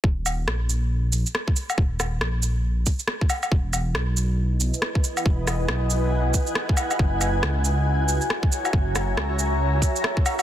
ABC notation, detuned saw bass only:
X:1
M:4/4
L:1/16
Q:"Swing 16ths" 1/4=138
K:Ebphr
V:1 name="Detuned saw bass" clef=bass
E,,,4 B,,,6 B,,,2 z4 | E,,,4 B,,,6 z6 | =E,,,4 =B,,,6 B,,, z4 z | =E,,,4 =B,,,6 z6 |
G,,,4 D,,6 D,, z4 z | G,,,4 D,,6 z6 |]